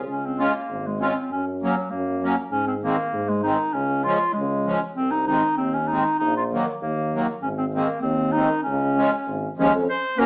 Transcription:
0.07 0.47 C#2 medium
0.07 0.27 C#4 medium
0.26 0.42 C4 medium
0.38 0.52 G#3 soft
0.38 0.88 A#3 medium
0.38 0.52 C#4 soft
0.38 0.52 F4 soft
0.69 1.09 G#1 medium
0.86 1.02 G#3 soft
1.00 1.13 G#3 soft
1.00 1.30 C4 medium
1.00 1.14 C#4 soft
1.00 1.14 F4 soft
1.30 1.69 F#2 medium
1.30 1.45 C#4 medium
1.61 1.92 F#3 medium
1.61 1.75 F#3 soft
1.61 1.75 A#3 soft
1.61 1.75 C#4 soft
1.90 2.31 F#2 medium
1.90 2.36 A#3 medium
2.22 2.35 F#3 soft
2.22 2.35 A#3 soft
2.22 2.36 C#4 soft
2.51 2.90 G#2 medium
2.51 2.65 C#4 medium
2.67 2.74 C4 medium
2.80 2.96 D#3 soft
2.80 2.96 G#3 soft
2.80 3.30 A#3 medium
2.85 2.97 C4 medium
3.13 3.52 G#2 medium
3.29 3.42 G#3 medium
3.43 3.57 D#3 soft
3.43 3.57 G#3 soft
3.43 3.57 C4 medium
3.43 3.75 D#4 medium
3.74 4.13 C#2 medium
3.74 4.05 C#4 medium
4.03 4.18 F3 soft
4.03 4.18 G#3 soft
4.03 4.19 C#4 medium
4.03 4.34 F4 medium
4.33 4.75 C#2 medium
4.33 4.80 G#3 medium
4.65 4.79 F3 soft
4.65 4.79 G#3 soft
4.65 4.80 C#4 soft
4.95 5.37 C2 medium
4.95 5.13 C4 medium
5.11 5.26 D#4 medium
5.27 5.41 D#3 medium
5.27 5.41 G#3 medium
5.27 5.42 C4 medium
5.27 5.56 D#4 medium
5.57 5.98 D#2 medium
5.57 5.75 C4 medium
5.74 5.89 C#4 medium
5.88 6.04 D#3 soft
5.88 6.04 G#3 soft
5.88 6.04 C4 medium
5.88 6.18 D#4 medium
6.19 6.60 A#1 medium
6.19 6.34 D#4 medium
6.37 6.44 F4 medium
6.52 6.65 D#3 soft
6.52 6.65 F#3 soft
6.52 6.66 A#3 medium
6.81 7.21 D#2 medium
6.81 7.24 A#3 medium
7.14 7.27 D#3 soft
7.14 7.26 F#3 soft
7.14 7.27 A#3 soft
7.41 7.81 G#1 medium
7.41 7.49 C#4 medium
7.58 7.65 C4 medium
7.73 7.87 D#3 soft
7.73 7.88 G#3 soft
7.73 8.01 A#3 medium
7.73 7.87 C4 medium
8.01 8.43 D#2 medium
8.01 8.34 C4 medium
8.32 8.49 D#3 medium
8.32 8.49 C4 soft
8.32 8.62 D#4 medium
8.37 8.49 G#3 soft
8.63 9.06 C#2 medium
8.63 9.53 C#4 medium
8.96 9.10 F3 soft
8.96 9.10 G#3 medium
8.96 9.10 C#4 medium
9.27 9.47 G#1 medium
9.57 9.72 D#2 medium
9.57 9.71 F3 medium
9.57 9.72 G#3 medium
9.57 9.72 C#4 medium
9.74 9.87 F2 medium
9.90 10.20 C5 medium
10.17 10.26 F#3 medium
10.17 10.26 A#3 medium
10.17 10.26 C#4 medium
10.17 10.26 A#4 medium

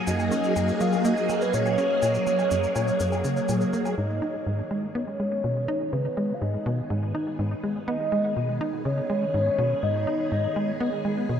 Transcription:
0.00 3.94 F#3 medium
0.00 3.94 A#3 medium
0.00 3.94 G#4 medium
0.07 0.30 F#2 medium
0.07 0.82 D#5 loud
0.07 shaker medium
0.19 low woodblock soft
0.19 shaker soft
0.32 0.55 C#4 medium
0.32 shaker medium
0.44 shaker soft
0.56 0.72 F#2 medium
0.56 low woodblock soft
0.56 shaker medium
0.68 shaker soft
0.80 0.96 F#3 medium
0.80 1.07 F5 loud
0.80 shaker medium
0.93 low woodblock soft
0.93 shaker soft
1.05 1.14 A#3 loud
1.05 1.43 D#5 loud
1.05 shaker medium
1.17 shaker soft
1.29 1.52 F#3 medium
1.29 low woodblock soft
1.29 shaker medium
1.41 1.55 B4 medium
1.41 shaker soft
1.54 1.77 A#2 medium
1.54 2.02 C#5 loud
1.54 shaker medium
1.66 low woodblock soft
1.66 shaker soft
1.78 2.01 C#4 loud
1.78 shaker soft
2.02 2.18 A#2 medium
2.02 3.69 C#5 loud
2.02 low woodblock soft
2.02 shaker medium
2.15 shaker soft
2.27 2.42 F#3 medium
2.27 shaker medium
2.39 low woodblock soft
2.39 shaker soft
2.51 2.67 F#2 medium
2.51 shaker medium
2.63 shaker soft
2.76 2.91 A#2 medium
2.76 low woodblock soft
2.76 shaker medium
2.88 shaker soft
3.00 3.23 F#2 medium
3.00 shaker medium
3.12 low woodblock soft
3.12 shaker soft
3.24 3.40 C#3 medium
3.24 shaker medium
3.37 shaker soft
3.49 3.64 A#2 medium
3.49 low woodblock soft
3.49 shaker medium
3.61 shaker soft
3.73 3.89 A#3 medium
3.73 shaker soft
3.85 low woodblock soft
3.85 shaker soft
3.97 4.21 G#2 medium
3.97 11.40 D#3 medium
3.97 11.40 B3 medium
3.97 11.40 G#4 medium
3.97 4.67 D#5 loud
4.22 4.45 D#4 medium
4.46 4.62 G#2 medium
4.71 4.86 G#3 medium
4.95 5.04 B3 medium
4.95 5.94 C#5 loud
5.20 5.43 G#3 medium
5.44 5.67 B2 medium
5.68 5.91 D#4 loud
5.93 6.08 C#3 medium
5.93 6.36 B4 loud
6.17 6.33 G#3 medium
6.34 6.43 F5 medium
6.41 6.57 G#2 medium
6.41 6.90 D#5 loud
6.66 6.81 B2 loud
6.90 7.13 G#2 medium
7.15 7.38 D#4 medium
7.39 7.55 G#2 medium
7.63 7.79 G#3 medium
7.88 7.97 B3 medium
7.88 8.57 D#5 loud
8.12 8.35 G#3 medium
8.36 8.60 B2 medium
8.61 8.84 D#4 medium
8.85 9.01 C#3 medium
8.85 9.84 C#5 loud
9.10 9.25 G#3 medium
9.34 9.50 G#2 medium
9.58 9.74 B2 loud
9.83 10.06 G#2 medium
9.83 10.31 D#5 loud
10.07 10.30 D#4 medium
10.32 10.47 G#2 medium
10.32 10.77 D#5 medium
10.56 10.72 G#3 medium
10.80 10.90 B3 loud
11.05 11.28 G#3 medium
11.29 11.40 B2 medium

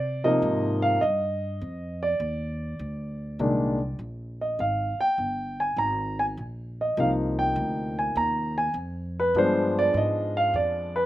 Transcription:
0.00 0.41 C3 medium
0.00 0.22 D5 medium
0.24 0.99 C3 medium
0.24 0.99 F3 medium
0.24 0.99 A#3 medium
0.24 0.99 D#4 medium
0.24 0.80 D#5 medium
0.42 1.00 G#2 medium
0.82 1.00 F5 medium
1.01 1.60 G2 medium
1.01 2.05 D#5 medium
1.61 2.19 F2 medium
2.03 3.96 D5 medium
2.20 2.78 D#2 medium
2.79 3.38 D2 medium
3.39 3.98 C2 medium
3.39 3.77 A#2 medium
3.39 3.77 D#3 medium
3.39 3.77 G#3 medium
3.39 3.77 D4 medium
3.99 4.57 A#1 medium
4.41 4.60 D#5 medium
4.59 4.97 G#1 medium
4.59 4.98 F5 medium
4.99 5.62 G5 medium
4.99 muted upright bass stroke soft
5.18 5.76 G1 medium
5.60 5.79 G#5 medium
5.76 6.35 G#1 medium
5.76 6.16 A#5 medium
6.19 6.24 G#5 medium
6.37 6.95 A#1 medium
6.81 6.97 D#5 medium
6.97 7.55 C2 medium
6.97 8.65 C3 soft
6.97 8.64 F3 medium
6.97 8.65 A#3 soft
6.97 8.65 D#4 medium
6.97 7.09 F5 medium
7.39 8.00 G5 medium
7.56 8.14 D2 medium
7.99 8.17 G#5 medium
8.15 8.73 D#2 medium
8.15 8.54 A#5 medium
8.58 8.75 G#5 medium
8.74 9.32 F2 medium
9.20 9.37 B4 medium
9.35 9.92 G2 medium
9.35 11.03 F3 medium
9.35 11.03 G#3 medium
9.35 11.03 B3 medium
9.35 11.03 D4 medium
9.35 9.79 C5 medium
9.79 9.96 D5 medium
9.94 10.52 G#2 medium
9.94 10.38 D#5 medium
10.37 10.54 F5 medium
10.54 11.06 F2 medium
10.54 10.97 D5 medium
10.96 11.06 B4 medium

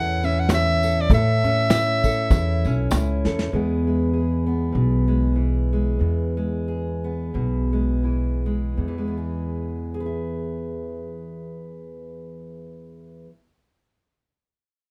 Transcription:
0.00 1.06 E2 loud
0.00 1.07 A2 medium
0.00 3.52 E3 medium
0.00 0.22 C#4 medium
0.00 0.49 E4 medium
0.00 0.82 A4 medium
0.00 0.26 F#5 loud
0.23 1.07 C#4 medium
0.23 0.41 E5 medium
0.23 tambourine soft
0.40 0.51 F#5 medium
0.49 1.71 E4 medium
0.49 snare loud
0.49 cajon slap medium
0.49 tambourine medium
0.54 1.02 E5 loud
0.83 1.07 A4 medium
0.83 tambourine medium
0.97 1.12 D5 medium
0.97 cajon slap soft
1.10 2.27 A2 loud
1.10 3.49 A2 medium
1.10 2.04 A4 medium
1.10 kick medium
1.10 cajon bass medium
1.10 cajon slap soft
1.10 tambourine soft
1.14 2.89 E5 loud
1.44 2.65 C#4 medium
1.44 cajon bass medium
1.44 cajon slap soft
1.70 2.31 E4 medium
1.70 cajon slap medium
1.70 snare loud
1.70 tambourine medium
2.04 3.25 A4 medium
2.04 kick medium
2.04 cajon slap soft
2.04 tambourine medium
2.30 2.63 E2 medium
2.30 2.92 E4 medium
2.30 kick medium
2.30 cajon bass medium
2.30 cajon slap soft
2.30 tambourine medium
2.64 2.89 B1 medium
2.64 3.50 C#4 medium
2.64 cajon slap soft
2.64 tambourine soft
2.91 3.22 C#2 medium
2.91 3.49 E4 medium
2.91 snare medium
2.91 cajon slap medium
2.91 tambourine loud
3.25 3.50 E2 medium
3.25 3.49 A4 medium
3.25 snare medium
3.39 snare medium
3.52 5.99 E2 medium
3.52 4.71 E2 medium
3.52 5.35 E3 soft
3.52 3.87 G#3 medium
3.52 4.46 B3 medium
3.52 4.13 G#4 medium
3.87 5.07 G#3 soft
4.13 6.68 G#4 soft
4.47 7.03 B3 medium
4.72 5.97 B1 medium
4.72 5.36 B2 medium
5.08 5.72 G#3 medium
5.36 8.03 E3 medium
5.73 6.36 G#3 medium
5.99 8.76 E2 medium
5.99 7.30 E2 medium
6.37 7.72 G#3 soft
6.68 8.74 G#4 soft
7.04 9.06 B3 soft
7.34 8.74 B1 medium
7.34 8.04 B2 soft
7.73 8.44 G#3 soft
8.04 8.87 E3 medium
8.46 8.97 G#3 medium
8.77 13.26 E2 medium
8.77 13.22 E2 medium
8.88 13.31 E3 soft
8.98 9.94 G#3 soft
9.08 10.00 B3 soft
9.18 9.94 G#4 soft
9.94 13.26 G#4 medium
10.00 13.29 B4 medium
10.06 13.32 E5 medium

